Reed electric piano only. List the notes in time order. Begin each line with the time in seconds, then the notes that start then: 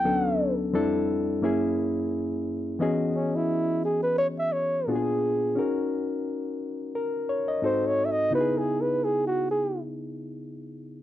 0.04 D2 F#3 B3 C#4 D4 A4
0.73 F2 G3 C4 D4 E4 A4
1.42 F#2 A#3 C#4 E4 G#4
2.79 E3 B3 C#4 F#4 G#4 D#5
4.87 A#2 B3 D4 F4 F#4
4.96 G#4
5.55 C#4 D#4 F#4 A#4
6.95 A#4
7.29 C#5
7.48 D#5
7.62 G#2 C4 D#4 F#4 A4
8.31 C#3 B3 D#4 E4 F#4
8.40 G#4